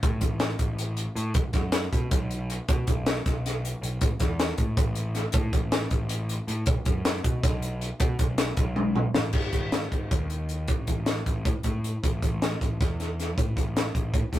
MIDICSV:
0, 0, Header, 1, 3, 480
1, 0, Start_track
1, 0, Tempo, 379987
1, 30, Time_signature, 7, 3, 24, 8
1, 9870, Tempo, 382897
1, 18116, End_track
2, 0, Start_track
2, 0, Title_t, "Picked electric bass"
2, 0, Program_c, 0, 34
2, 40, Note_on_c, 0, 45, 101
2, 231, Note_off_c, 0, 45, 0
2, 264, Note_on_c, 0, 33, 87
2, 657, Note_off_c, 0, 33, 0
2, 750, Note_on_c, 0, 33, 82
2, 1336, Note_off_c, 0, 33, 0
2, 1459, Note_on_c, 0, 45, 97
2, 1658, Note_off_c, 0, 45, 0
2, 1701, Note_on_c, 0, 35, 88
2, 1801, Note_off_c, 0, 35, 0
2, 1942, Note_on_c, 0, 42, 75
2, 2335, Note_off_c, 0, 42, 0
2, 2436, Note_on_c, 0, 47, 90
2, 2627, Note_off_c, 0, 47, 0
2, 2666, Note_on_c, 0, 35, 86
2, 3253, Note_off_c, 0, 35, 0
2, 3398, Note_on_c, 0, 47, 114
2, 3588, Note_off_c, 0, 47, 0
2, 3634, Note_on_c, 0, 35, 77
2, 4022, Note_off_c, 0, 35, 0
2, 4116, Note_on_c, 0, 35, 84
2, 4698, Note_off_c, 0, 35, 0
2, 4819, Note_on_c, 0, 35, 91
2, 5017, Note_off_c, 0, 35, 0
2, 5071, Note_on_c, 0, 33, 88
2, 5166, Note_off_c, 0, 33, 0
2, 5305, Note_on_c, 0, 40, 82
2, 5696, Note_off_c, 0, 40, 0
2, 5786, Note_on_c, 0, 45, 86
2, 5981, Note_off_c, 0, 45, 0
2, 6026, Note_on_c, 0, 33, 94
2, 6613, Note_off_c, 0, 33, 0
2, 6739, Note_on_c, 0, 45, 95
2, 6938, Note_off_c, 0, 45, 0
2, 6990, Note_on_c, 0, 33, 73
2, 7380, Note_off_c, 0, 33, 0
2, 7466, Note_on_c, 0, 33, 91
2, 8054, Note_off_c, 0, 33, 0
2, 8178, Note_on_c, 0, 45, 87
2, 8378, Note_off_c, 0, 45, 0
2, 8425, Note_on_c, 0, 35, 95
2, 8524, Note_off_c, 0, 35, 0
2, 8662, Note_on_c, 0, 42, 78
2, 9057, Note_off_c, 0, 42, 0
2, 9143, Note_on_c, 0, 47, 89
2, 9342, Note_off_c, 0, 47, 0
2, 9391, Note_on_c, 0, 35, 95
2, 9979, Note_off_c, 0, 35, 0
2, 10101, Note_on_c, 0, 47, 101
2, 10300, Note_off_c, 0, 47, 0
2, 10338, Note_on_c, 0, 35, 94
2, 10733, Note_off_c, 0, 35, 0
2, 10821, Note_on_c, 0, 35, 91
2, 11410, Note_off_c, 0, 35, 0
2, 11546, Note_on_c, 0, 33, 103
2, 11742, Note_off_c, 0, 33, 0
2, 11777, Note_on_c, 0, 32, 76
2, 11977, Note_off_c, 0, 32, 0
2, 12019, Note_on_c, 0, 32, 79
2, 12414, Note_off_c, 0, 32, 0
2, 12513, Note_on_c, 0, 32, 78
2, 12707, Note_off_c, 0, 32, 0
2, 12746, Note_on_c, 0, 39, 76
2, 13465, Note_off_c, 0, 39, 0
2, 13465, Note_on_c, 0, 33, 82
2, 13663, Note_off_c, 0, 33, 0
2, 13715, Note_on_c, 0, 33, 70
2, 14106, Note_off_c, 0, 33, 0
2, 14186, Note_on_c, 0, 33, 81
2, 14384, Note_off_c, 0, 33, 0
2, 14427, Note_on_c, 0, 45, 77
2, 14527, Note_off_c, 0, 45, 0
2, 14668, Note_on_c, 0, 45, 80
2, 15062, Note_off_c, 0, 45, 0
2, 15155, Note_on_c, 0, 33, 82
2, 15350, Note_off_c, 0, 33, 0
2, 15398, Note_on_c, 0, 33, 75
2, 15788, Note_off_c, 0, 33, 0
2, 15888, Note_on_c, 0, 33, 77
2, 16078, Note_off_c, 0, 33, 0
2, 16131, Note_on_c, 0, 40, 85
2, 16844, Note_off_c, 0, 40, 0
2, 16844, Note_on_c, 0, 45, 84
2, 17035, Note_off_c, 0, 45, 0
2, 17077, Note_on_c, 0, 33, 68
2, 17466, Note_off_c, 0, 33, 0
2, 17557, Note_on_c, 0, 33, 81
2, 17751, Note_off_c, 0, 33, 0
2, 17797, Note_on_c, 0, 45, 84
2, 17893, Note_off_c, 0, 45, 0
2, 18041, Note_on_c, 0, 45, 71
2, 18116, Note_off_c, 0, 45, 0
2, 18116, End_track
3, 0, Start_track
3, 0, Title_t, "Drums"
3, 35, Note_on_c, 9, 42, 75
3, 37, Note_on_c, 9, 36, 105
3, 161, Note_off_c, 9, 42, 0
3, 163, Note_off_c, 9, 36, 0
3, 264, Note_on_c, 9, 42, 64
3, 272, Note_on_c, 9, 36, 72
3, 391, Note_off_c, 9, 42, 0
3, 398, Note_off_c, 9, 36, 0
3, 502, Note_on_c, 9, 42, 78
3, 504, Note_on_c, 9, 38, 106
3, 628, Note_off_c, 9, 42, 0
3, 630, Note_off_c, 9, 38, 0
3, 745, Note_on_c, 9, 42, 67
3, 749, Note_on_c, 9, 36, 74
3, 872, Note_off_c, 9, 42, 0
3, 875, Note_off_c, 9, 36, 0
3, 991, Note_on_c, 9, 42, 83
3, 1118, Note_off_c, 9, 42, 0
3, 1222, Note_on_c, 9, 42, 72
3, 1348, Note_off_c, 9, 42, 0
3, 1471, Note_on_c, 9, 42, 67
3, 1597, Note_off_c, 9, 42, 0
3, 1695, Note_on_c, 9, 42, 88
3, 1704, Note_on_c, 9, 36, 104
3, 1821, Note_off_c, 9, 42, 0
3, 1830, Note_off_c, 9, 36, 0
3, 1935, Note_on_c, 9, 42, 71
3, 1937, Note_on_c, 9, 38, 31
3, 1941, Note_on_c, 9, 36, 77
3, 2061, Note_off_c, 9, 42, 0
3, 2063, Note_off_c, 9, 38, 0
3, 2067, Note_off_c, 9, 36, 0
3, 2174, Note_on_c, 9, 42, 98
3, 2176, Note_on_c, 9, 38, 102
3, 2300, Note_off_c, 9, 42, 0
3, 2303, Note_off_c, 9, 38, 0
3, 2433, Note_on_c, 9, 36, 77
3, 2440, Note_on_c, 9, 42, 73
3, 2559, Note_off_c, 9, 36, 0
3, 2566, Note_off_c, 9, 42, 0
3, 2668, Note_on_c, 9, 42, 91
3, 2671, Note_on_c, 9, 36, 98
3, 2794, Note_off_c, 9, 42, 0
3, 2797, Note_off_c, 9, 36, 0
3, 2913, Note_on_c, 9, 42, 68
3, 3040, Note_off_c, 9, 42, 0
3, 3156, Note_on_c, 9, 42, 74
3, 3282, Note_off_c, 9, 42, 0
3, 3391, Note_on_c, 9, 42, 82
3, 3394, Note_on_c, 9, 36, 98
3, 3517, Note_off_c, 9, 42, 0
3, 3520, Note_off_c, 9, 36, 0
3, 3628, Note_on_c, 9, 42, 58
3, 3635, Note_on_c, 9, 36, 79
3, 3754, Note_off_c, 9, 42, 0
3, 3761, Note_off_c, 9, 36, 0
3, 3869, Note_on_c, 9, 42, 82
3, 3872, Note_on_c, 9, 38, 107
3, 3996, Note_off_c, 9, 42, 0
3, 3998, Note_off_c, 9, 38, 0
3, 4116, Note_on_c, 9, 42, 60
3, 4118, Note_on_c, 9, 38, 34
3, 4119, Note_on_c, 9, 36, 71
3, 4242, Note_off_c, 9, 42, 0
3, 4245, Note_off_c, 9, 36, 0
3, 4245, Note_off_c, 9, 38, 0
3, 4369, Note_on_c, 9, 42, 92
3, 4371, Note_on_c, 9, 38, 30
3, 4495, Note_off_c, 9, 42, 0
3, 4498, Note_off_c, 9, 38, 0
3, 4609, Note_on_c, 9, 42, 63
3, 4735, Note_off_c, 9, 42, 0
3, 4843, Note_on_c, 9, 42, 65
3, 4969, Note_off_c, 9, 42, 0
3, 5064, Note_on_c, 9, 42, 82
3, 5073, Note_on_c, 9, 36, 93
3, 5190, Note_off_c, 9, 42, 0
3, 5199, Note_off_c, 9, 36, 0
3, 5300, Note_on_c, 9, 42, 67
3, 5302, Note_on_c, 9, 38, 36
3, 5310, Note_on_c, 9, 36, 76
3, 5426, Note_off_c, 9, 42, 0
3, 5429, Note_off_c, 9, 38, 0
3, 5437, Note_off_c, 9, 36, 0
3, 5551, Note_on_c, 9, 42, 86
3, 5553, Note_on_c, 9, 38, 104
3, 5677, Note_off_c, 9, 42, 0
3, 5679, Note_off_c, 9, 38, 0
3, 5781, Note_on_c, 9, 42, 66
3, 5789, Note_on_c, 9, 36, 73
3, 5907, Note_off_c, 9, 42, 0
3, 5916, Note_off_c, 9, 36, 0
3, 6027, Note_on_c, 9, 36, 101
3, 6028, Note_on_c, 9, 42, 90
3, 6154, Note_off_c, 9, 36, 0
3, 6154, Note_off_c, 9, 42, 0
3, 6258, Note_on_c, 9, 42, 65
3, 6384, Note_off_c, 9, 42, 0
3, 6502, Note_on_c, 9, 42, 71
3, 6505, Note_on_c, 9, 38, 31
3, 6629, Note_off_c, 9, 42, 0
3, 6631, Note_off_c, 9, 38, 0
3, 6723, Note_on_c, 9, 42, 94
3, 6743, Note_on_c, 9, 36, 111
3, 6849, Note_off_c, 9, 42, 0
3, 6870, Note_off_c, 9, 36, 0
3, 6985, Note_on_c, 9, 36, 82
3, 6985, Note_on_c, 9, 42, 72
3, 7111, Note_off_c, 9, 36, 0
3, 7111, Note_off_c, 9, 42, 0
3, 7223, Note_on_c, 9, 42, 95
3, 7226, Note_on_c, 9, 38, 112
3, 7350, Note_off_c, 9, 42, 0
3, 7352, Note_off_c, 9, 38, 0
3, 7460, Note_on_c, 9, 42, 71
3, 7468, Note_on_c, 9, 36, 73
3, 7587, Note_off_c, 9, 42, 0
3, 7594, Note_off_c, 9, 36, 0
3, 7697, Note_on_c, 9, 42, 91
3, 7823, Note_off_c, 9, 42, 0
3, 7948, Note_on_c, 9, 42, 64
3, 8075, Note_off_c, 9, 42, 0
3, 8186, Note_on_c, 9, 42, 73
3, 8312, Note_off_c, 9, 42, 0
3, 8411, Note_on_c, 9, 42, 84
3, 8425, Note_on_c, 9, 36, 113
3, 8537, Note_off_c, 9, 42, 0
3, 8551, Note_off_c, 9, 36, 0
3, 8658, Note_on_c, 9, 42, 61
3, 8669, Note_on_c, 9, 36, 81
3, 8784, Note_off_c, 9, 42, 0
3, 8795, Note_off_c, 9, 36, 0
3, 8906, Note_on_c, 9, 42, 97
3, 8908, Note_on_c, 9, 38, 109
3, 9032, Note_off_c, 9, 42, 0
3, 9035, Note_off_c, 9, 38, 0
3, 9151, Note_on_c, 9, 36, 77
3, 9151, Note_on_c, 9, 42, 67
3, 9277, Note_off_c, 9, 42, 0
3, 9278, Note_off_c, 9, 36, 0
3, 9392, Note_on_c, 9, 36, 116
3, 9398, Note_on_c, 9, 42, 91
3, 9400, Note_on_c, 9, 38, 31
3, 9518, Note_off_c, 9, 36, 0
3, 9524, Note_off_c, 9, 42, 0
3, 9526, Note_off_c, 9, 38, 0
3, 9631, Note_on_c, 9, 42, 60
3, 9757, Note_off_c, 9, 42, 0
3, 9871, Note_on_c, 9, 42, 73
3, 9996, Note_off_c, 9, 42, 0
3, 10101, Note_on_c, 9, 42, 86
3, 10108, Note_on_c, 9, 36, 105
3, 10226, Note_off_c, 9, 42, 0
3, 10234, Note_off_c, 9, 36, 0
3, 10340, Note_on_c, 9, 42, 69
3, 10345, Note_on_c, 9, 36, 79
3, 10466, Note_off_c, 9, 42, 0
3, 10471, Note_off_c, 9, 36, 0
3, 10579, Note_on_c, 9, 42, 102
3, 10582, Note_on_c, 9, 38, 102
3, 10705, Note_off_c, 9, 42, 0
3, 10707, Note_off_c, 9, 38, 0
3, 10816, Note_on_c, 9, 42, 68
3, 10821, Note_on_c, 9, 36, 85
3, 10941, Note_off_c, 9, 42, 0
3, 10947, Note_off_c, 9, 36, 0
3, 11058, Note_on_c, 9, 48, 65
3, 11183, Note_off_c, 9, 48, 0
3, 11301, Note_on_c, 9, 45, 67
3, 11426, Note_off_c, 9, 45, 0
3, 11539, Note_on_c, 9, 38, 100
3, 11664, Note_off_c, 9, 38, 0
3, 11766, Note_on_c, 9, 49, 75
3, 11778, Note_on_c, 9, 36, 84
3, 11892, Note_off_c, 9, 49, 0
3, 11903, Note_off_c, 9, 36, 0
3, 12018, Note_on_c, 9, 42, 52
3, 12020, Note_on_c, 9, 36, 65
3, 12144, Note_off_c, 9, 42, 0
3, 12145, Note_off_c, 9, 36, 0
3, 12262, Note_on_c, 9, 42, 74
3, 12264, Note_on_c, 9, 38, 103
3, 12387, Note_off_c, 9, 42, 0
3, 12389, Note_off_c, 9, 38, 0
3, 12509, Note_on_c, 9, 36, 65
3, 12514, Note_on_c, 9, 42, 43
3, 12635, Note_off_c, 9, 36, 0
3, 12639, Note_off_c, 9, 42, 0
3, 12751, Note_on_c, 9, 36, 85
3, 12751, Note_on_c, 9, 42, 74
3, 12876, Note_off_c, 9, 42, 0
3, 12877, Note_off_c, 9, 36, 0
3, 12986, Note_on_c, 9, 42, 49
3, 13111, Note_off_c, 9, 42, 0
3, 13223, Note_on_c, 9, 42, 50
3, 13349, Note_off_c, 9, 42, 0
3, 13458, Note_on_c, 9, 42, 71
3, 13467, Note_on_c, 9, 36, 86
3, 13583, Note_off_c, 9, 42, 0
3, 13593, Note_off_c, 9, 36, 0
3, 13704, Note_on_c, 9, 42, 55
3, 13711, Note_on_c, 9, 36, 62
3, 13830, Note_off_c, 9, 42, 0
3, 13836, Note_off_c, 9, 36, 0
3, 13942, Note_on_c, 9, 42, 75
3, 13944, Note_on_c, 9, 38, 102
3, 14067, Note_off_c, 9, 42, 0
3, 14070, Note_off_c, 9, 38, 0
3, 14195, Note_on_c, 9, 36, 64
3, 14196, Note_on_c, 9, 42, 56
3, 14320, Note_off_c, 9, 36, 0
3, 14321, Note_off_c, 9, 42, 0
3, 14433, Note_on_c, 9, 36, 90
3, 14433, Note_on_c, 9, 42, 72
3, 14558, Note_off_c, 9, 36, 0
3, 14558, Note_off_c, 9, 42, 0
3, 14659, Note_on_c, 9, 42, 57
3, 14671, Note_on_c, 9, 36, 62
3, 14785, Note_off_c, 9, 42, 0
3, 14796, Note_off_c, 9, 36, 0
3, 14921, Note_on_c, 9, 42, 60
3, 15046, Note_off_c, 9, 42, 0
3, 15163, Note_on_c, 9, 36, 87
3, 15170, Note_on_c, 9, 42, 71
3, 15288, Note_off_c, 9, 36, 0
3, 15295, Note_off_c, 9, 42, 0
3, 15400, Note_on_c, 9, 36, 76
3, 15403, Note_on_c, 9, 42, 55
3, 15525, Note_off_c, 9, 36, 0
3, 15529, Note_off_c, 9, 42, 0
3, 15645, Note_on_c, 9, 42, 67
3, 15647, Note_on_c, 9, 38, 91
3, 15770, Note_off_c, 9, 42, 0
3, 15772, Note_off_c, 9, 38, 0
3, 15887, Note_on_c, 9, 36, 66
3, 15892, Note_on_c, 9, 42, 48
3, 16012, Note_off_c, 9, 36, 0
3, 16017, Note_off_c, 9, 42, 0
3, 16129, Note_on_c, 9, 36, 91
3, 16143, Note_on_c, 9, 42, 73
3, 16145, Note_on_c, 9, 38, 28
3, 16254, Note_off_c, 9, 36, 0
3, 16268, Note_off_c, 9, 42, 0
3, 16270, Note_off_c, 9, 38, 0
3, 16371, Note_on_c, 9, 42, 50
3, 16373, Note_on_c, 9, 38, 31
3, 16496, Note_off_c, 9, 42, 0
3, 16499, Note_off_c, 9, 38, 0
3, 16617, Note_on_c, 9, 42, 55
3, 16620, Note_on_c, 9, 38, 30
3, 16743, Note_off_c, 9, 42, 0
3, 16745, Note_off_c, 9, 38, 0
3, 16844, Note_on_c, 9, 36, 96
3, 16853, Note_on_c, 9, 42, 64
3, 16969, Note_off_c, 9, 36, 0
3, 16978, Note_off_c, 9, 42, 0
3, 17084, Note_on_c, 9, 36, 72
3, 17095, Note_on_c, 9, 42, 52
3, 17209, Note_off_c, 9, 36, 0
3, 17221, Note_off_c, 9, 42, 0
3, 17331, Note_on_c, 9, 42, 75
3, 17333, Note_on_c, 9, 38, 97
3, 17456, Note_off_c, 9, 42, 0
3, 17459, Note_off_c, 9, 38, 0
3, 17561, Note_on_c, 9, 36, 66
3, 17567, Note_on_c, 9, 42, 53
3, 17686, Note_off_c, 9, 36, 0
3, 17692, Note_off_c, 9, 42, 0
3, 17796, Note_on_c, 9, 36, 91
3, 17802, Note_on_c, 9, 42, 75
3, 17922, Note_off_c, 9, 36, 0
3, 17928, Note_off_c, 9, 42, 0
3, 18035, Note_on_c, 9, 36, 60
3, 18042, Note_on_c, 9, 42, 58
3, 18045, Note_on_c, 9, 38, 28
3, 18116, Note_off_c, 9, 36, 0
3, 18116, Note_off_c, 9, 38, 0
3, 18116, Note_off_c, 9, 42, 0
3, 18116, End_track
0, 0, End_of_file